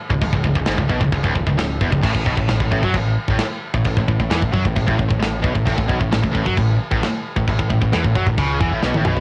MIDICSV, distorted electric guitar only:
0, 0, Header, 1, 2, 480
1, 0, Start_track
1, 0, Tempo, 453858
1, 224, Time_signature, 4, 2, 24, 8
1, 9732, End_track
2, 0, Start_track
2, 0, Title_t, "Distorted electric guitar"
2, 0, Program_c, 0, 30
2, 116, Note_on_c, 0, 37, 74
2, 220, Note_off_c, 0, 37, 0
2, 233, Note_on_c, 0, 37, 67
2, 342, Note_off_c, 0, 37, 0
2, 354, Note_on_c, 0, 37, 74
2, 466, Note_off_c, 0, 37, 0
2, 479, Note_on_c, 0, 37, 70
2, 584, Note_off_c, 0, 37, 0
2, 596, Note_on_c, 0, 37, 71
2, 702, Note_off_c, 0, 37, 0
2, 707, Note_on_c, 0, 44, 104
2, 820, Note_off_c, 0, 44, 0
2, 835, Note_on_c, 0, 37, 80
2, 939, Note_off_c, 0, 37, 0
2, 943, Note_on_c, 0, 47, 102
2, 1059, Note_off_c, 0, 47, 0
2, 1068, Note_on_c, 0, 37, 70
2, 1175, Note_off_c, 0, 37, 0
2, 1187, Note_on_c, 0, 37, 73
2, 1291, Note_off_c, 0, 37, 0
2, 1304, Note_on_c, 0, 37, 106
2, 1416, Note_off_c, 0, 37, 0
2, 1429, Note_on_c, 0, 37, 68
2, 1544, Note_off_c, 0, 37, 0
2, 1557, Note_on_c, 0, 37, 77
2, 1655, Note_off_c, 0, 37, 0
2, 1668, Note_on_c, 0, 37, 73
2, 1863, Note_off_c, 0, 37, 0
2, 1917, Note_on_c, 0, 40, 106
2, 2021, Note_off_c, 0, 40, 0
2, 2026, Note_on_c, 0, 37, 76
2, 2141, Note_off_c, 0, 37, 0
2, 2145, Note_on_c, 0, 45, 108
2, 2248, Note_off_c, 0, 45, 0
2, 2261, Note_on_c, 0, 45, 78
2, 2386, Note_off_c, 0, 45, 0
2, 2390, Note_on_c, 0, 47, 101
2, 2506, Note_off_c, 0, 47, 0
2, 2517, Note_on_c, 0, 45, 73
2, 2612, Note_off_c, 0, 45, 0
2, 2625, Note_on_c, 0, 45, 76
2, 2750, Note_off_c, 0, 45, 0
2, 2766, Note_on_c, 0, 45, 80
2, 2855, Note_off_c, 0, 45, 0
2, 2867, Note_on_c, 0, 45, 101
2, 2985, Note_off_c, 0, 45, 0
2, 3003, Note_on_c, 0, 54, 101
2, 3113, Note_off_c, 0, 54, 0
2, 3134, Note_on_c, 0, 45, 75
2, 3317, Note_off_c, 0, 45, 0
2, 3489, Note_on_c, 0, 45, 101
2, 3596, Note_off_c, 0, 45, 0
2, 3959, Note_on_c, 0, 45, 82
2, 4068, Note_off_c, 0, 45, 0
2, 4081, Note_on_c, 0, 45, 67
2, 4199, Note_off_c, 0, 45, 0
2, 4215, Note_on_c, 0, 45, 77
2, 4304, Note_off_c, 0, 45, 0
2, 4316, Note_on_c, 0, 45, 73
2, 4428, Note_off_c, 0, 45, 0
2, 4441, Note_on_c, 0, 45, 76
2, 4553, Note_on_c, 0, 52, 97
2, 4559, Note_off_c, 0, 45, 0
2, 4668, Note_off_c, 0, 52, 0
2, 4669, Note_on_c, 0, 45, 75
2, 4787, Note_on_c, 0, 54, 106
2, 4793, Note_off_c, 0, 45, 0
2, 4905, Note_off_c, 0, 54, 0
2, 4909, Note_on_c, 0, 45, 76
2, 5018, Note_off_c, 0, 45, 0
2, 5030, Note_on_c, 0, 45, 71
2, 5135, Note_off_c, 0, 45, 0
2, 5148, Note_on_c, 0, 45, 102
2, 5256, Note_off_c, 0, 45, 0
2, 5268, Note_on_c, 0, 45, 75
2, 5367, Note_off_c, 0, 45, 0
2, 5380, Note_on_c, 0, 45, 71
2, 5487, Note_off_c, 0, 45, 0
2, 5499, Note_on_c, 0, 45, 72
2, 5699, Note_off_c, 0, 45, 0
2, 5736, Note_on_c, 0, 47, 114
2, 5858, Note_off_c, 0, 47, 0
2, 5864, Note_on_c, 0, 45, 76
2, 5967, Note_off_c, 0, 45, 0
2, 5979, Note_on_c, 0, 45, 103
2, 6089, Note_off_c, 0, 45, 0
2, 6102, Note_on_c, 0, 45, 80
2, 6214, Note_off_c, 0, 45, 0
2, 6218, Note_on_c, 0, 47, 102
2, 6339, Note_off_c, 0, 47, 0
2, 6350, Note_on_c, 0, 45, 75
2, 6455, Note_off_c, 0, 45, 0
2, 6468, Note_on_c, 0, 45, 73
2, 6571, Note_off_c, 0, 45, 0
2, 6584, Note_on_c, 0, 45, 79
2, 6675, Note_off_c, 0, 45, 0
2, 6688, Note_on_c, 0, 45, 104
2, 6808, Note_on_c, 0, 54, 96
2, 6813, Note_off_c, 0, 45, 0
2, 6933, Note_off_c, 0, 54, 0
2, 6954, Note_on_c, 0, 45, 77
2, 7144, Note_off_c, 0, 45, 0
2, 7313, Note_on_c, 0, 45, 99
2, 7424, Note_off_c, 0, 45, 0
2, 7792, Note_on_c, 0, 45, 77
2, 7910, Note_off_c, 0, 45, 0
2, 7922, Note_on_c, 0, 45, 68
2, 8014, Note_off_c, 0, 45, 0
2, 8027, Note_on_c, 0, 45, 77
2, 8128, Note_off_c, 0, 45, 0
2, 8140, Note_on_c, 0, 45, 71
2, 8249, Note_off_c, 0, 45, 0
2, 8262, Note_on_c, 0, 45, 73
2, 8384, Note_off_c, 0, 45, 0
2, 8385, Note_on_c, 0, 52, 112
2, 8498, Note_off_c, 0, 52, 0
2, 8508, Note_on_c, 0, 45, 79
2, 8627, Note_off_c, 0, 45, 0
2, 8627, Note_on_c, 0, 54, 108
2, 8739, Note_off_c, 0, 54, 0
2, 8741, Note_on_c, 0, 45, 76
2, 8863, Note_off_c, 0, 45, 0
2, 8867, Note_on_c, 0, 49, 110
2, 9098, Note_off_c, 0, 49, 0
2, 9102, Note_on_c, 0, 52, 108
2, 9216, Note_off_c, 0, 52, 0
2, 9240, Note_on_c, 0, 45, 103
2, 9345, Note_off_c, 0, 45, 0
2, 9358, Note_on_c, 0, 47, 93
2, 9464, Note_off_c, 0, 47, 0
2, 9489, Note_on_c, 0, 45, 99
2, 9589, Note_off_c, 0, 45, 0
2, 9595, Note_on_c, 0, 47, 98
2, 9732, Note_off_c, 0, 47, 0
2, 9732, End_track
0, 0, End_of_file